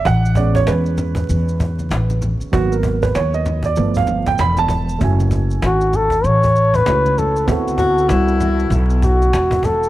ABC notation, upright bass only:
X:1
M:4/4
L:1/16
Q:"Swing 16ths" 1/4=97
K:F#m
V:1 name="Upright bass" clef=bass
A,,,4 E,,4 E,,4 A,,,3 z | G,,,4 ^D,,4 =G,,,4 E,,,4 | F,,,4 G,,,4 A,,,4 C,,4 | D,,4 =C,,4 B,,,4 E,,,4 |]